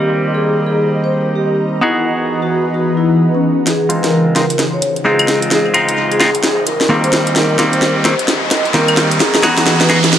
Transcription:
Already playing: D#3 G3 A#3 C4 D#4 G4 A#4 C5 D#5
0.26 A#5
0.35 G#4
0.66 G#4
1.04 C5
1.36 G4
1.81 E3 B3 D#4 E4 F#4 G#4 B4
2.27 B4
2.42 F#4
2.74 F#4
2.97 E4
3.35 C#4
3.66 C#3 D#4 F4 G#4 C5, snare, closed hi-hat, riser
3.89 G#3 C4 D#4 F4, closed hi-hat
4.04 A#4, snare, closed hi-hat
4.35 G#3 C4 D#4 F4 A#4, snare, closed hi-hat
4.50 closed hi-hat
4.59 snare, closed hi-hat
4.73 C#5 D#5
4.82 closed hi-hat
4.96 closed hi-hat
5.05 G#3 C4 D#4 F4 G#4
5.19 closed hi-hat, claves
5.28 snare, closed hi-hat
5.42 closed hi-hat
5.51 G#4, snare, closed hi-hat
5.74 G#3 C4 D#4 F4, closed hi-hat, claves
5.89 closed hi-hat
6.11 G#4, closed hi-hat
6.20 G#3 C4 D#4 F4, snare, closed hi-hat
6.35 closed hi-hat
6.43 G#4, snare, closed hi-hat
6.67 A#4, closed hi-hat
6.81 snare, closed hi-hat
6.89 D#3 G3 A#3 C4
7.04 C5, closed hi-hat
7.13 G4 A#4, snare, closed hi-hat
7.27 closed hi-hat
7.36 A#4, snare, closed hi-hat
7.58 D#3 G3 A#3 C4, snare, closed hi-hat
7.73 C5, closed hi-hat
7.82 snare
8.01 A#5
8.05 D#3 G3 A#3 C4 C5, snare, closed hi-hat
8.19 closed hi-hat
8.28 snare, closed hi-hat
8.43 D#5
8.51 snare, closed hi-hat
8.65 closed hi-hat
8.74 D#3 G3 A#3 C4 A#4, snare
8.88 closed hi-hat, claves
8.97 snare, closed hi-hat
9.11 closed hi-hat
9.20 E3 F#4 G#4 B4, snare, closed hi-hat
9.35 snare
9.43 B3 D#4 F#4 G#4, snare, closed hi-hat, claves
9.58 snare, closed hi-hat
9.67 snare
9.81 B4, snare, closed hi-hat
9.89 B3 D#4 F#4 G#4, snare, closed hi-hat
10.04 snare, closed hi-hat
10.13 F#4, snare, closed hi-hat, reverse cymbal

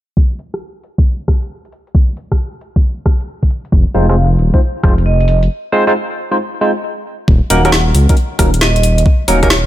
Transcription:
0.17 kick
0.39 open hi-hat
0.54 cross-stick, closed hi-hat
0.84 open hi-hat
0.98 kick, closed hi-hat
1.06 closed hi-hat
1.28 kick, cross-stick, open hi-hat
1.43 closed hi-hat
1.65 closed hi-hat
1.72 open hi-hat
1.87 closed hi-hat
1.95 kick
2.17 open hi-hat
2.32 kick, cross-stick, closed hi-hat
2.61 open hi-hat
2.76 kick, closed hi-hat
2.84 closed hi-hat
3.06 kick, cross-stick, open hi-hat
3.20 closed hi-hat
3.43 kick, closed hi-hat
3.50 open hi-hat
3.65 closed hi-hat
3.72 F1, kick
3.95 F1 G#3 C4 D#4 F4 C5 F5, open hi-hat
4.09 G#3 C4 D#4 F4 C5 F5, cross-stick, closed hi-hat
4.39 D#1, open hi-hat
4.54 G#3 C4 D#4 F4 C5, kick, closed hi-hat
4.61 closed hi-hat
4.83 F1 G#3 C4 D#4 F4 C5, kick, cross-stick, open hi-hat
4.98 closed hi-hat
5.06 D#5
5.20 D#5, closed hi-hat
5.28 open hi-hat
5.43 closed hi-hat
5.72 G#3 C4 D#4 F4 C5
5.87 G#3 C4 D#4 F4 C5
6.32 G#3 C4 D#4 F4 C5
6.61 G#3 C4 D#4 F4 C5
7.28 D#1, kick
7.50 D#1 F#3 A#3 C#4 D#4 A#4 F#5, open hi-hat
7.65 F#3 A#3 C#4 D#4 A#4 F#5, cross-stick, closed hi-hat
7.72 snare
7.95 C#2, open hi-hat
8.09 F#3 A#3 C#4 D#4 A#4, kick, closed hi-hat
8.17 closed hi-hat
8.39 D#1 F#3 A#3 C#4 D#4 A#4, kick, cross-stick, open hi-hat
8.54 closed hi-hat
8.61 D#5, snare
8.76 D#5, closed hi-hat
8.83 D#5, open hi-hat
8.98 closed hi-hat
9.06 kick
9.28 D#1 F#3 A#3 C#4 D#4 A#4 C#5, open hi-hat
9.43 F#3 A#3 C#4 D#4 A#4 C#5, kick, cross-stick, closed hi-hat
9.50 snare

